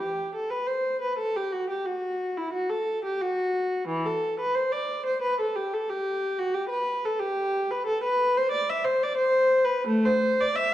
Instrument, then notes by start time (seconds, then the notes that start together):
viola
0.00 G4
0.35 A4
0.50 B4
0.67 C5
1.02 B4
1.18 A4
1.36 G4
1.52 F#4
1.70 G4
1.86 F#4
2.37 E4
2.53 F#4
2.70 A4
3.05 G4
3.20 F#4
3.88 E3
4.05 A4
4.40 B4
4.55 C5
4.72 D5
5.06 C5
5.22 B4
5.40 A4
5.56 G4
5.74 A4
5.89 G4
6.39 F#4
6.54 G4
6.69 B4
7.05 A4
7.19 G4
7.71 B4
7.87 A4
8.03 B4
8.37 C5
8.51 D5
8.69 E5
8.84 C5
9.03 D5
9.17 C5
9.65 B4
9.87 A3
10.05 C5
10.41 D5
10.56 E5